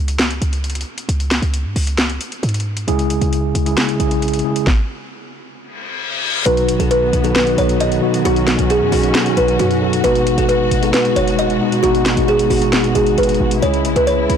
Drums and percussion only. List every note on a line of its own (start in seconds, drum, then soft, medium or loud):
0.08 closed hi-hat medium
0.19 snare loud
0.19 closed hi-hat medium
0.31 closed hi-hat medium
0.42 closed hi-hat medium
0.53 closed hi-hat medium
0.64 closed hi-hat medium
0.70 closed hi-hat medium
0.75 closed hi-hat medium
0.81 closed hi-hat medium
0.98 closed hi-hat medium
1.09 closed hi-hat medium
1.20 closed hi-hat medium
1.31 snare medium
1.31 closed hi-hat medium
1.42 closed hi-hat medium
1.54 closed hi-hat medium
1.76 open hi-hat medium
1.87 closed hi-hat medium
1.98 snare loud
1.98 closed hi-hat medium
2.10 closed hi-hat medium
2.21 closed hi-hat medium
2.32 closed hi-hat medium
2.43 closed hi-hat medium
2.49 closed hi-hat medium
2.54 closed hi-hat medium
2.60 closed hi-hat medium
2.77 closed hi-hat medium
2.88 closed hi-hat medium
2.99 closed hi-hat medium
3.10 closed hi-hat medium
3.21 closed hi-hat medium
3.33 closed hi-hat medium
3.55 closed hi-hat medium
3.66 closed hi-hat medium
3.77 snare loud
3.77 closed hi-hat medium
3.89 closed hi-hat medium
4.00 closed hi-hat medium
4.11 closed hi-hat medium
4.22 closed hi-hat medium
4.28 closed hi-hat medium
4.33 closed hi-hat medium
4.39 closed hi-hat medium
4.56 closed hi-hat medium
4.67 kick loud
4.67 snare medium
6.46 closed hi-hat medium
6.57 closed hi-hat medium
6.69 closed hi-hat medium
6.80 closed hi-hat medium
6.91 closed hi-hat medium
7.13 closed hi-hat medium
7.24 closed hi-hat medium
7.36 snare loud
7.36 closed hi-hat medium
7.47 closed hi-hat medium
7.58 closed hi-hat medium
7.69 closed hi-hat medium
7.80 closed hi-hat medium
7.92 closed hi-hat soft
8.14 closed hi-hat medium
8.25 closed hi-hat medium
8.36 closed hi-hat medium
8.47 snare medium
8.47 closed hi-hat medium
8.59 closed hi-hat medium
8.70 closed hi-hat medium
8.92 open hi-hat medium
9.03 closed hi-hat medium
9.15 snare loud
9.15 closed hi-hat medium
9.26 closed hi-hat medium
9.37 closed hi-hat medium
9.48 closed hi-hat medium
9.59 closed hi-hat medium
9.71 closed hi-hat soft
9.93 closed hi-hat medium
10.04 closed hi-hat medium
10.15 closed hi-hat medium
10.27 closed hi-hat medium
10.38 closed hi-hat medium
10.49 closed hi-hat medium
10.71 closed hi-hat medium
10.83 closed hi-hat medium
10.94 snare loud
10.94 closed hi-hat medium
11.05 closed hi-hat medium
11.16 closed hi-hat medium
11.28 closed hi-hat medium
11.39 closed hi-hat medium
11.50 closed hi-hat soft
11.72 closed hi-hat medium
11.83 closed hi-hat medium
11.95 closed hi-hat medium
12.06 snare loud
12.06 closed hi-hat medium
12.17 closed hi-hat medium
12.28 closed hi-hat soft
12.39 closed hi-hat medium
12.51 open hi-hat medium
12.62 closed hi-hat medium
12.73 snare loud
12.73 closed hi-hat medium
12.84 closed hi-hat medium
12.95 closed hi-hat medium
13.07 closed hi-hat medium
13.18 closed hi-hat medium
13.23 closed hi-hat medium
13.29 closed hi-hat medium
13.35 closed hi-hat soft
13.51 closed hi-hat medium
13.62 closed hi-hat medium
13.74 closed hi-hat medium
13.85 closed hi-hat medium
13.96 closed hi-hat medium
14.07 closed hi-hat medium
14.30 closed hi-hat medium